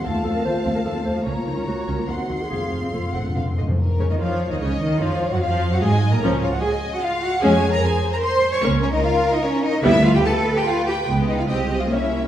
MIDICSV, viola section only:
0, 0, Header, 1, 2, 480
1, 0, Start_track
1, 0, Tempo, 407332
1, 62, Time_signature, 3, 2, 24, 8
1, 2463, Tempo, 421348
1, 4863, Tempo, 402145
1, 10623, Tempo, 412088
1, 14413, End_track
2, 0, Start_track
2, 0, Title_t, "Viola section"
2, 0, Program_c, 0, 48
2, 52, Note_on_c, 0, 60, 67
2, 102, Note_off_c, 0, 60, 0
2, 181, Note_on_c, 0, 57, 38
2, 228, Note_off_c, 0, 57, 0
2, 291, Note_on_c, 0, 53, 42
2, 340, Note_off_c, 0, 53, 0
2, 410, Note_on_c, 0, 60, 63
2, 459, Note_off_c, 0, 60, 0
2, 534, Note_on_c, 0, 57, 42
2, 582, Note_off_c, 0, 57, 0
2, 763, Note_on_c, 0, 60, 57
2, 813, Note_off_c, 0, 60, 0
2, 881, Note_on_c, 0, 57, 47
2, 931, Note_off_c, 0, 57, 0
2, 1003, Note_on_c, 0, 53, 45
2, 1053, Note_off_c, 0, 53, 0
2, 1116, Note_on_c, 0, 60, 58
2, 1167, Note_off_c, 0, 60, 0
2, 1235, Note_on_c, 0, 57, 43
2, 1286, Note_off_c, 0, 57, 0
2, 1356, Note_on_c, 0, 53, 53
2, 1407, Note_off_c, 0, 53, 0
2, 1486, Note_on_c, 0, 61, 54
2, 1535, Note_off_c, 0, 61, 0
2, 1598, Note_on_c, 0, 58, 33
2, 1649, Note_off_c, 0, 58, 0
2, 1717, Note_on_c, 0, 53, 32
2, 1769, Note_off_c, 0, 53, 0
2, 1841, Note_on_c, 0, 61, 53
2, 1892, Note_off_c, 0, 61, 0
2, 1968, Note_on_c, 0, 58, 36
2, 2018, Note_off_c, 0, 58, 0
2, 2215, Note_on_c, 0, 61, 50
2, 2265, Note_off_c, 0, 61, 0
2, 2326, Note_on_c, 0, 58, 35
2, 2377, Note_off_c, 0, 58, 0
2, 2448, Note_on_c, 0, 51, 40
2, 2499, Note_off_c, 0, 51, 0
2, 2561, Note_on_c, 0, 60, 43
2, 2612, Note_off_c, 0, 60, 0
2, 2680, Note_on_c, 0, 54, 39
2, 2732, Note_off_c, 0, 54, 0
2, 2812, Note_on_c, 0, 51, 31
2, 2862, Note_off_c, 0, 51, 0
2, 2926, Note_on_c, 0, 60, 45
2, 2977, Note_off_c, 0, 60, 0
2, 3049, Note_on_c, 0, 57, 28
2, 3100, Note_off_c, 0, 57, 0
2, 3165, Note_on_c, 0, 53, 30
2, 3216, Note_off_c, 0, 53, 0
2, 3290, Note_on_c, 0, 60, 47
2, 3340, Note_off_c, 0, 60, 0
2, 3415, Note_on_c, 0, 57, 31
2, 3465, Note_off_c, 0, 57, 0
2, 3664, Note_on_c, 0, 60, 46
2, 3712, Note_off_c, 0, 60, 0
2, 3788, Note_on_c, 0, 57, 35
2, 3835, Note_off_c, 0, 57, 0
2, 3904, Note_on_c, 0, 53, 32
2, 3953, Note_off_c, 0, 53, 0
2, 4031, Note_on_c, 0, 60, 41
2, 4079, Note_off_c, 0, 60, 0
2, 4154, Note_on_c, 0, 57, 36
2, 4202, Note_off_c, 0, 57, 0
2, 4279, Note_on_c, 0, 53, 35
2, 4325, Note_off_c, 0, 53, 0
2, 4632, Note_on_c, 0, 49, 58
2, 4678, Note_off_c, 0, 49, 0
2, 4750, Note_on_c, 0, 51, 53
2, 4863, Note_off_c, 0, 51, 0
2, 4869, Note_on_c, 0, 53, 63
2, 5230, Note_on_c, 0, 51, 58
2, 5231, Note_off_c, 0, 53, 0
2, 5348, Note_off_c, 0, 51, 0
2, 5354, Note_on_c, 0, 49, 67
2, 5450, Note_off_c, 0, 49, 0
2, 5594, Note_on_c, 0, 51, 71
2, 5830, Note_off_c, 0, 51, 0
2, 5836, Note_on_c, 0, 53, 74
2, 6199, Note_off_c, 0, 53, 0
2, 6203, Note_on_c, 0, 54, 63
2, 6319, Note_off_c, 0, 54, 0
2, 6329, Note_on_c, 0, 53, 70
2, 6678, Note_off_c, 0, 53, 0
2, 6688, Note_on_c, 0, 54, 67
2, 6804, Note_off_c, 0, 54, 0
2, 6806, Note_on_c, 0, 56, 71
2, 7162, Note_off_c, 0, 56, 0
2, 7162, Note_on_c, 0, 58, 68
2, 7279, Note_off_c, 0, 58, 0
2, 7288, Note_on_c, 0, 53, 73
2, 7290, Note_on_c, 0, 61, 65
2, 7505, Note_off_c, 0, 53, 0
2, 7506, Note_off_c, 0, 61, 0
2, 8710, Note_on_c, 0, 61, 77
2, 8715, Note_on_c, 0, 56, 80
2, 8934, Note_off_c, 0, 61, 0
2, 8937, Note_off_c, 0, 56, 0
2, 10141, Note_on_c, 0, 58, 84
2, 10141, Note_on_c, 0, 61, 81
2, 10364, Note_off_c, 0, 58, 0
2, 10364, Note_off_c, 0, 61, 0
2, 11564, Note_on_c, 0, 55, 89
2, 11564, Note_on_c, 0, 59, 85
2, 11788, Note_off_c, 0, 59, 0
2, 11789, Note_off_c, 0, 55, 0
2, 13005, Note_on_c, 0, 56, 73
2, 13006, Note_on_c, 0, 59, 67
2, 13453, Note_off_c, 0, 56, 0
2, 13453, Note_off_c, 0, 59, 0
2, 13485, Note_on_c, 0, 56, 63
2, 13486, Note_on_c, 0, 60, 58
2, 13962, Note_off_c, 0, 56, 0
2, 13962, Note_off_c, 0, 60, 0
2, 13962, Note_on_c, 0, 58, 60
2, 13962, Note_on_c, 0, 61, 58
2, 14413, Note_off_c, 0, 58, 0
2, 14413, Note_off_c, 0, 61, 0
2, 14413, End_track
0, 0, End_of_file